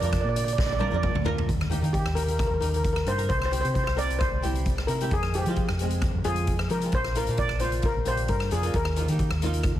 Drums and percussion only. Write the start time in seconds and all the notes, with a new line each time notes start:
0.02 closed hi-hat
0.13 kick, cross-stick, closed hi-hat
0.36 closed hi-hat
0.48 closed hi-hat
0.58 kick, snare
0.81 high tom
1.03 kick, mid tom
1.15 mid tom
1.26 floor tom
1.38 floor tom
1.49 kick, closed hi-hat
1.61 cross-stick
1.72 closed hi-hat
1.84 closed hi-hat
1.94 kick, closed hi-hat
2.06 cross-stick
2.16 closed hi-hat
2.28 closed hi-hat
2.39 kick, cross-stick, closed hi-hat
2.62 closed hi-hat
2.74 closed hi-hat
2.84 kick, closed hi-hat
2.96 cross-stick
3.06 closed hi-hat
3.19 closed hi-hat
3.29 kick, closed hi-hat
3.42 cross-stick
3.53 closed hi-hat
3.65 closed hi-hat
3.75 kick, closed hi-hat
3.87 cross-stick
3.98 closed hi-hat
4.10 closed hi-hat
4.21 kick, cross-stick, closed hi-hat
4.43 closed hi-hat
4.55 closed hi-hat
4.66 kick, closed hi-hat
4.78 cross-stick
4.88 closed hi-hat
5.01 closed hi-hat
5.11 kick, closed hi-hat
5.23 cross-stick
5.34 closed hi-hat
5.46 closed hi-hat
5.56 kick, closed hi-hat
5.69 cross-stick
5.79 closed hi-hat
5.90 closed hi-hat
6.02 kick, cross-stick, closed hi-hat
6.24 closed hi-hat
6.36 closed hi-hat
6.47 kick, closed hi-hat
6.59 cross-stick
6.70 closed hi-hat
6.82 closed hi-hat
6.92 kick, closed hi-hat
7.05 cross-stick
7.15 closed hi-hat
7.27 closed hi-hat
7.37 kick, closed hi-hat
7.49 cross-stick
7.60 closed hi-hat
7.72 closed hi-hat
7.82 kick, closed hi-hat
8.05 closed hi-hat
8.17 closed hi-hat
8.28 kick, closed hi-hat
8.40 cross-stick
8.51 closed hi-hat
8.63 closed hi-hat
8.74 kick, closed hi-hat
8.85 cross-stick
8.96 closed hi-hat
9.08 closed hi-hat
9.19 kick, closed hi-hat
9.31 cross-stick
9.42 closed hi-hat
9.54 closed hi-hat
9.63 kick, cross-stick, closed hi-hat